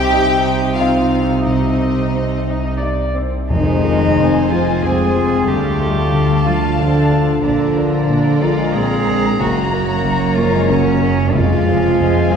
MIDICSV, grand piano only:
0, 0, Header, 1, 2, 480
1, 0, Start_track
1, 0, Tempo, 672646
1, 1040, Time_signature, 3, 2, 24, 8
1, 3447, Tempo, 651466
1, 8998, End_track
2, 0, Start_track
2, 0, Title_t, "Grand piano"
2, 0, Program_c, 0, 0
2, 0, Control_c, 0, 64, 127
2, 0, Note_on_c, 0, 36, 64
2, 85, Note_on_c, 0, 60, 49
2, 88, Note_on_c, 0, 63, 48
2, 93, Note_on_c, 0, 75, 49
2, 529, Note_off_c, 0, 60, 0
2, 531, Note_off_c, 0, 63, 0
2, 533, Note_off_c, 0, 75, 0
2, 560, Note_on_c, 0, 60, 41
2, 562, Note_on_c, 0, 63, 44
2, 566, Note_on_c, 0, 75, 50
2, 1013, Note_off_c, 0, 60, 0
2, 1014, Note_off_c, 0, 63, 0
2, 1016, Note_off_c, 0, 75, 0
2, 1044, Note_off_c, 0, 36, 0
2, 1044, Note_on_c, 0, 36, 48
2, 1052, Control_c, 0, 64, 0
2, 1192, Control_c, 0, 64, 127
2, 1512, Note_off_c, 0, 36, 0
2, 1528, Note_on_c, 0, 60, 37
2, 1528, Note_on_c, 0, 63, 35
2, 1533, Note_on_c, 0, 75, 43
2, 1983, Note_off_c, 0, 60, 0
2, 1983, Note_off_c, 0, 63, 0
2, 1985, Note_off_c, 0, 75, 0
2, 2009, Note_on_c, 0, 60, 36
2, 2014, Note_on_c, 0, 63, 38
2, 2016, Note_on_c, 0, 75, 45
2, 2468, Note_off_c, 0, 60, 0
2, 2470, Note_off_c, 0, 63, 0
2, 2471, Note_off_c, 0, 75, 0
2, 2500, Note_on_c, 0, 41, 51
2, 2502, Note_on_c, 0, 29, 50
2, 2510, Control_c, 0, 64, 0
2, 2618, Control_c, 0, 64, 127
2, 2731, Note_off_c, 0, 41, 0
2, 2732, Note_off_c, 0, 29, 0
2, 2735, Note_on_c, 0, 60, 43
2, 2737, Note_on_c, 0, 65, 47
2, 2743, Note_on_c, 0, 68, 47
2, 2951, Note_off_c, 0, 60, 0
2, 2952, Note_off_c, 0, 65, 0
2, 2955, Note_off_c, 0, 68, 0
2, 2974, Note_on_c, 0, 29, 50
2, 2977, Note_on_c, 0, 41, 47
2, 3205, Note_off_c, 0, 29, 0
2, 3206, Note_off_c, 0, 41, 0
2, 3214, Note_on_c, 0, 60, 44
2, 3219, Note_on_c, 0, 65, 47
2, 3221, Note_on_c, 0, 68, 47
2, 3424, Note_off_c, 0, 60, 0
2, 3427, Note_off_c, 0, 65, 0
2, 3428, Note_off_c, 0, 68, 0
2, 3447, Note_on_c, 0, 29, 50
2, 3447, Note_on_c, 0, 41, 48
2, 3681, Note_off_c, 0, 29, 0
2, 3681, Note_off_c, 0, 41, 0
2, 3689, Note_on_c, 0, 60, 45
2, 3692, Note_on_c, 0, 65, 43
2, 3695, Note_on_c, 0, 68, 47
2, 3907, Note_off_c, 0, 60, 0
2, 3908, Note_off_c, 0, 65, 0
2, 3910, Note_off_c, 0, 68, 0
2, 3926, Note_on_c, 0, 38, 51
2, 3927, Note_on_c, 0, 50, 51
2, 3944, Control_c, 0, 64, 0
2, 4062, Control_c, 0, 64, 127
2, 4152, Note_off_c, 0, 50, 0
2, 4163, Note_on_c, 0, 50, 43
2, 4164, Note_off_c, 0, 38, 0
2, 4167, Note_on_c, 0, 65, 42
2, 4171, Note_on_c, 0, 69, 48
2, 4384, Note_off_c, 0, 50, 0
2, 4386, Note_off_c, 0, 65, 0
2, 4388, Note_off_c, 0, 69, 0
2, 4406, Note_on_c, 0, 38, 45
2, 4406, Note_on_c, 0, 50, 45
2, 4642, Note_off_c, 0, 38, 0
2, 4642, Note_off_c, 0, 50, 0
2, 4642, Note_on_c, 0, 62, 44
2, 4646, Note_on_c, 0, 65, 43
2, 4649, Note_on_c, 0, 69, 47
2, 4863, Note_off_c, 0, 62, 0
2, 4865, Note_off_c, 0, 65, 0
2, 4867, Note_off_c, 0, 69, 0
2, 4888, Note_on_c, 0, 38, 52
2, 4889, Note_on_c, 0, 50, 53
2, 5124, Note_off_c, 0, 38, 0
2, 5124, Note_off_c, 0, 50, 0
2, 5129, Note_on_c, 0, 62, 45
2, 5135, Note_on_c, 0, 65, 42
2, 5136, Note_on_c, 0, 69, 47
2, 5347, Note_off_c, 0, 62, 0
2, 5350, Note_off_c, 0, 65, 0
2, 5351, Note_off_c, 0, 69, 0
2, 5366, Note_on_c, 0, 34, 51
2, 5368, Note_on_c, 0, 46, 52
2, 5388, Control_c, 0, 64, 0
2, 5520, Control_c, 0, 64, 127
2, 5602, Note_off_c, 0, 34, 0
2, 5603, Note_off_c, 0, 46, 0
2, 5604, Note_on_c, 0, 65, 44
2, 5605, Note_on_c, 0, 62, 44
2, 5609, Note_on_c, 0, 70, 50
2, 5823, Note_off_c, 0, 65, 0
2, 5824, Note_off_c, 0, 62, 0
2, 5826, Note_off_c, 0, 70, 0
2, 5850, Note_on_c, 0, 46, 52
2, 5851, Note_on_c, 0, 34, 51
2, 6084, Note_off_c, 0, 46, 0
2, 6085, Note_off_c, 0, 34, 0
2, 6088, Note_on_c, 0, 62, 43
2, 6090, Note_on_c, 0, 65, 47
2, 6094, Note_on_c, 0, 70, 48
2, 6307, Note_off_c, 0, 62, 0
2, 6309, Note_off_c, 0, 65, 0
2, 6311, Note_off_c, 0, 70, 0
2, 6331, Note_on_c, 0, 34, 49
2, 6333, Note_on_c, 0, 46, 53
2, 6567, Note_off_c, 0, 34, 0
2, 6568, Note_off_c, 0, 46, 0
2, 6570, Note_on_c, 0, 62, 45
2, 6571, Note_on_c, 0, 65, 44
2, 6573, Note_on_c, 0, 70, 48
2, 6789, Note_off_c, 0, 62, 0
2, 6790, Note_off_c, 0, 65, 0
2, 6791, Note_off_c, 0, 70, 0
2, 6806, Note_on_c, 0, 30, 52
2, 6806, Note_on_c, 0, 42, 53
2, 6830, Control_c, 0, 64, 0
2, 6951, Control_c, 0, 64, 127
2, 7044, Note_off_c, 0, 30, 0
2, 7044, Note_off_c, 0, 42, 0
2, 7050, Note_on_c, 0, 61, 46
2, 7056, Note_on_c, 0, 66, 46
2, 7058, Note_on_c, 0, 70, 49
2, 7267, Note_off_c, 0, 61, 0
2, 7270, Note_off_c, 0, 66, 0
2, 7271, Note_off_c, 0, 70, 0
2, 7286, Note_on_c, 0, 30, 53
2, 7286, Note_on_c, 0, 42, 49
2, 7519, Note_off_c, 0, 30, 0
2, 7519, Note_off_c, 0, 42, 0
2, 7529, Note_on_c, 0, 61, 45
2, 7535, Note_on_c, 0, 70, 48
2, 7743, Note_off_c, 0, 61, 0
2, 7746, Note_off_c, 0, 70, 0
2, 7764, Note_on_c, 0, 42, 53
2, 7766, Note_on_c, 0, 30, 57
2, 7995, Note_off_c, 0, 42, 0
2, 7996, Note_off_c, 0, 30, 0
2, 8004, Note_on_c, 0, 61, 47
2, 8007, Note_on_c, 0, 66, 43
2, 8011, Note_on_c, 0, 70, 53
2, 8219, Note_off_c, 0, 61, 0
2, 8220, Note_off_c, 0, 66, 0
2, 8223, Note_off_c, 0, 70, 0
2, 8240, Note_on_c, 0, 41, 60
2, 8242, Note_on_c, 0, 29, 54
2, 8257, Control_c, 0, 64, 0
2, 8358, Control_c, 0, 64, 127
2, 8475, Note_off_c, 0, 41, 0
2, 8476, Note_off_c, 0, 29, 0
2, 8490, Note_on_c, 0, 65, 49
2, 8494, Note_on_c, 0, 68, 47
2, 8495, Note_on_c, 0, 72, 52
2, 8705, Note_off_c, 0, 65, 0
2, 8707, Note_off_c, 0, 68, 0
2, 8708, Note_off_c, 0, 72, 0
2, 8728, Note_on_c, 0, 29, 57
2, 8728, Note_on_c, 0, 41, 54
2, 8959, Note_off_c, 0, 29, 0
2, 8960, Note_off_c, 0, 41, 0
2, 8963, Note_on_c, 0, 65, 49
2, 8967, Note_on_c, 0, 68, 51
2, 8972, Note_on_c, 0, 72, 50
2, 8998, Note_off_c, 0, 65, 0
2, 8998, Note_off_c, 0, 68, 0
2, 8998, Note_off_c, 0, 72, 0
2, 8998, End_track
0, 0, End_of_file